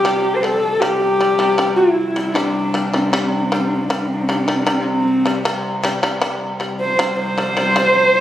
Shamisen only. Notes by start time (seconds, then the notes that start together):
0.05 C3 G3
0.43 C3 G3
0.82 C3 G3
1.21 C3 G3
1.39 C3 G3
1.58 C3 G3
2.16 C3 G3
2.35 C3 G3
2.74 C3 G3
2.93 C3 G3
3.13 C3 G3
3.52 C3 G3
3.90 C3 G3
4.29 C3 G3
4.48 C3 G3
4.67 C3 G3
5.26 C3 G3
5.45 C3 G3
5.83 C3 G3
6.03 C3 G3
6.21 C3 G3
6.60 C3 G3
6.99 C3 G3
7.38 C3 G3
7.57 C3 G3
7.76 C3 G3